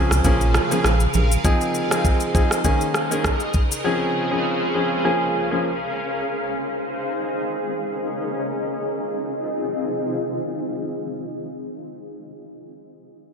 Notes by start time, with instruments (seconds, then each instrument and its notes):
Already playing: ambient pad C#3 G#4 C5 F5, grand piano F3 C4 C#4 G#4
0.11 sub bass C2, cross-stick, high bongo, shaker
0.24 sub bass A#1, grand piano F3 A#3 C#4 G#4, ambient pad A#4, kick, low bongo, low conga, shaker
0.41 shaker
0.54 cross-stick, high bongo, shaker
0.71 grand piano F3 A#3 C#4 G#4, low bongo, shaker
0.84 sub bass A#1, cross-stick, high bongo, shaker
1.00 shaker
1.14 sub bass A#1, low conga, shaker
1.32 shaker
1.44 grand piano F3 C4 D#4 G#4, ambient pad D#4 C5, kick, shaker
1.61 shaker
1.74 shaker
1.91 grand piano F3 C4 D#4 G#4, cross-stick, shaker
2.05 kick, shaker
2.20 shaker
2.34 grand piano F3 C4 D#4 G#4, kick, shaker
2.51 cross-stick, shaker
2.64 ambient pad C#3 G#4 A#4 D#5, grand piano D#3 A#3 C#4 G#4, kick, shaker
2.81 shaker
2.94 cross-stick, shaker
3.11 grand piano D#3 A#3 C#4 G#4, shaker
3.24 kick, cross-stick, shaker
3.40 shaker
3.54 kick, shaker
3.72 shaker
3.84 grand piano F3 C4 C#4 G#4, ambient pad C5 F5
4.31 grand piano F3 C4 C#4 G#4
4.74 grand piano F3 C4 C#4 G#4
5.04 grand piano F3 A#3 C#4 G#4, ambient pad C#4 A#4
5.51 grand piano F3 A#3 C#4 G#4
6.25 ambient pad D#4 G#4 C5
7.45 ambient pad C#4 A#4 D#5
8.65 ambient pad C4 D#4 F4 G#4 D#5